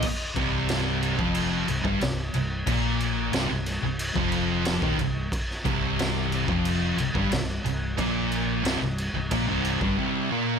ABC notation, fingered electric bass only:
X:1
M:4/4
L:1/16
Q:1/4=90
K:Cm
V:1 name="Fingered electric bass" clef=bass
z2 C,,,4- C,,, F,,,3 C,,, G,,, C,,,2 C,,,2 | B,,,4 C,,, C,,,2 C,,,2 F,,,4 E,,, C,,,2 | z2 C,,,4- C,,, F,,,3 C,,, G,,, C,,,2 C,,,2 | B,,,4 C,,, C,,,2 C,,, B,,, C,,,2 G,,, z4 |]